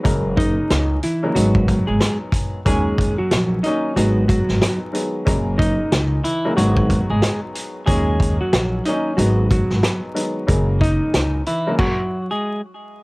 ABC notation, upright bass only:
X:1
M:4/4
L:1/16
Q:"Swing 16ths" 1/4=92
K:G#m
V:1 name="Upright bass" clef=bass
F,,,4 C,,2 z2 G,,,3 G,,, z4 | D,,4 A,,,2 z2 G,,,3 G,,, z4 | F,,,4 C,,2 z2 G,,,3 G,,, z4 | D,,4 A,,,2 z2 G,,,3 G,,, z4 |
F,,,4 C,,2 z8 z2 |]